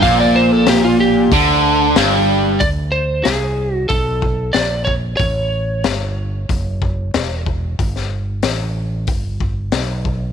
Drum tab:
HH |o---o---o---o---|o---o---o---o---|o---o---o---o---|o---o---o---o---|
SD |----o-------o---|----o-------o---|----o-------o---|-o--o-------o---|
BD |o-------o-------|o-------o-o---o-|o-------o-o---o-|o-------o-o---o-|